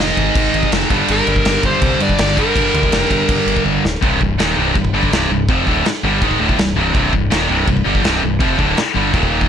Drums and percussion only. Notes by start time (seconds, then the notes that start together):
0.17 kick, crash
0.35 kick, crash
0.54 crash
0.63 kick
0.72 snare, crash
0.90 kick, crash
1.08 crash
1.27 crash
1.36 kick
1.45 snare, crash
1.63 kick, crash
1.82 kick, crash
2.00 crash
2.09 kick
2.18 snare, crash
2.37 kick, crash
2.56 kick, crash
2.74 crash
2.83 kick
2.92 snare, crash
3.11 kick, crash
3.29 kick, crash
3.48 crash
3.57 kick
3.66 kick
3.85 snare
4.03 kick, china
4.21 kick
4.39 snare, china
4.75 kick, china
4.85 kick
5.03 kick
5.12 snare, china
5.49 kick, china
5.67 kick
5.85 snare, china
6.22 kick, china
6.31 kick
6.49 kick
6.58 snare, china
6.95 kick, china
7.13 kick
7.31 snare, china
7.67 kick, china
7.77 kick
7.95 kick
8.04 snare, china
8.41 kick, china
8.59 kick
8.77 snare, china
9.14 kick, china
9.23 kick
9.41 kick